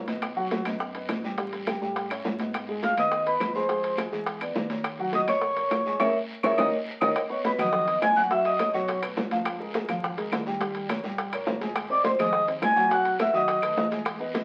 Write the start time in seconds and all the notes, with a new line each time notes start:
Already playing: B1
0.08 B3 B4 D#5, high conga, high timbale, short guiro
0.22 high bongo, high conga, high timbale, long guiro, claves
0.36 F#3 F#4 F#5, high bongo, high conga
0.51 high bongo, high conga, high timbale, low timbale, short guiro
0.65 F#2 B3 B4 D#5, high bongo, high conga, high timbale, short guiro, claves
0.80 high bongo, long guiro
0.95 B3 B4 D#5, high bongo, high conga, high timbale
1.09 A1, high bongo, low bongo, high conga, high timbale, low timbale, short guiro, claves
1.24 G3 G4 G5, short guiro
1.38 G3 G4 G5, high bongo, high conga, high timbale, long guiro
1.53 high bongo, high conga, high timbale
1.67 G3 G4 G5, high bongo, high conga, high timbale, low timbale, short guiro, claves
1.82 A2 G3 G4 G5, high bongo, high conga, short guiro
1.96 high bongo, high conga, high timbale, long guiro
2.10 C#4 C#5 E5, high bongo, high conga, high timbale, claves
2.25 G#2 C#4 C#5 E5, high bongo, low bongo, high conga, low timbale, short guiro
2.39 B3 B4 D#5, high conga, high timbale, short guiro
2.53 high bongo, high conga, high timbale, long guiro, claves
2.69 G#3 G#4 G#5, high bongo, high conga
2.82 F5 F6, high bongo, high conga, high timbale, low timbale, short guiro
2.97 D#2 B3 B4 D#5 D#6, high bongo, high conga, high timbale, short guiro, claves
3.12 high bongo, high conga, long guiro
3.26 B3 B4 D#5 B5, high bongo, high conga, high timbale
3.40 F2, high bongo, low bongo, high conga, high timbale, low timbale, short guiro, claves
3.55 G#3 G#4 C5 G#5 C6, short guiro
3.69 G#3 G#4 G#5, high bongo, high conga, high timbale, long guiro
3.83 high bongo, high conga, high timbale
3.97 G#3 G#4 G#5, high bongo, high conga, high timbale, low timbale, short guiro, claves
4.12 E2 G#3 G#4 G#5, high bongo, high conga, short guiro
4.26 high bongo, high conga, high timbale, long guiro
4.41 B3 B4 D5, high bongo, high conga, high timbale, claves
4.55 D#2 B3 B4 D5, high bongo, low bongo, high conga, low timbale, short guiro
4.69 A#3 A#4 C#5, high conga, high timbale, short guiro
4.84 high bongo, high conga, high timbale, long guiro, claves
4.99 F#3 F#4 F#5, high bongo
5.13 D#5 D#6, high bongo, high conga, high timbale, low timbale, short guiro
5.27 A#1 A#3 A#4 C#5 C#6, high bongo, high conga, high timbale, short guiro, claves
5.42 high bongo, high conga, long guiro
5.56 A#3 A#4 C#5, high bongo, high conga, high timbale
5.71 A#1, high bongo, low bongo, high conga, high timbale, low timbale, short guiro, claves
5.86 G#3 G#4 G#5, short guiro
5.99 A#1 G#4 A#4 C#5 E5 C#6, low bongo, high conga, high timbale, long guiro, claves
6.43 A#1 G#4 A#4 C#5 E5 C#6, low bongo, high conga, high timbale, long guiro, claves
6.57 D#2 D#4 G4 A#4 C#5 D#5 D#6, low bongo, high conga, high timbale, long guiro, claves
7.01 D#2 D#4 G4 A#4 C#5 D#5 D#6, low bongo, high conga, high timbale, long guiro, claves
7.15 high bongo, high timbale, long guiro, claves
7.30 B3 B4 C#5 D#5 C#6, high bongo, high conga
7.44 B3 B4 D#5 B5, high bongo, high conga, high timbale, low timbale, short guiro
7.58 D#2 F#3 F#4 D#5 F#5 D#6, high bongo, high conga, low conga, high timbale, short guiro, claves
7.73 high bongo, high conga, low conga, long guiro
7.87 B3 B4 D#5, high bongo, high conga, high timbale
8.02 F#2 G#5 G#6, high bongo, low bongo, high conga, high timbale, low timbale, short guiro, claves
8.16 F#3 F#4 F#5 F#6, high conga, short guiro
8.30 F#3 F#4 E5 F#5 E6, high bongo, high conga, high timbale, long guiro
8.45 D#5 D#6, high bongo, high conga, high timbale
8.59 A3 A4 C#5, high bongo, high conga, high timbale, low timbale, short guiro, claves
8.74 B1 F#3 F#4 C#5 F#5 C#6, high bongo, high conga, short guiro
8.88 high bongo, high conga, high timbale, long guiro
9.02 B1 A3 A4 B4, high bongo, high conga, high timbale, claves
9.17 C#2, high bongo, low bongo, high conga, low timbale, short guiro
9.31 F3 F4 F5, high conga, high timbale, short guiro
9.45 high bongo, high conga, high timbale, long guiro, claves
9.60 G#3 G#4 A#4, high bongo, high conga
9.74 G#3 G#4 A#4, high bongo, high conga, high timbale, low timbale, short guiro
9.89 G#1 F3 F4 F5, high bongo, high conga, low conga, high timbale, short guiro, claves
10.04 high bongo, high conga, low conga, long guiro
10.17 G#3 G#4 A#4, high bongo, high conga, high timbale
10.32 D#2, high bongo, low bongo, high conga, high timbale, low timbale, short guiro, claves
10.46 G3 G4 G5, short guiro
10.60 G3 G4 G5, high bongo, high conga, high timbale, long guiro
10.75 high bongo, high conga, high timbale
10.89 A#3 A#4 C#5, high bongo, high conga, high timbale, low timbale, short guiro, claves
11.04 A#1 G3 G4 G5, high bongo, high conga, short guiro
11.18 high bongo, high conga, high timbale
11.33 A#1 A#3 A#4 C#5, high bongo, high conga, high timbale, claves
11.47 G#1, high bongo, low bongo, high conga, low timbale, short guiro
11.61 G#3 G#4 G#5, high conga, high timbale, short guiro
11.76 high bongo, high conga, high timbale, long guiro, claves
11.89 C4 C5 D5 D#5 D6, high bongo, high conga
12.04 C4 C5 D#5 C6, high bongo, high conga, high timbale, low timbale, short guiro
12.19 D#2 G#3 G#4 D#5 G#5 D#6, high bongo, high conga, low conga, high timbale, short guiro, claves
12.33 high bongo, high conga, long guiro
12.47 C4 C5 D#5, high bongo, high conga, high timbale
12.62 B1 G#5 G#6, high bongo, low bongo, high conga, high timbale, low timbale, short guiro, claves
12.76 F#3 F#4 F#5, high conga, short guiro
12.90 F#3 F#4 F#5 F#6, high bongo, high conga, high timbale, long guiro
13.05 high bongo, high conga, high timbale
13.19 A3 A4 B4 E5 E6, high bongo, high conga, high timbale, low timbale, short guiro, claves
13.33 D#2 F#3 F#4 D#5 F#5 D#6, high bongo, short guiro
13.48 high bongo, high timbale, long guiro
13.62 D#2 A3 A4 B4, high bongo, high timbale, claves
13.77 E2, high bongo, low bongo, high conga, low timbale, short guiro
13.91 G#3 G#4 G#5, high conga, high timbale, short guiro
14.05 high bongo, high conga, high timbale, long guiro, claves
14.20 B3 B4 D#5, high bongo, high conga
14.34 B3 B4 D#5, high bongo, high conga, high timbale, low timbale, short guiro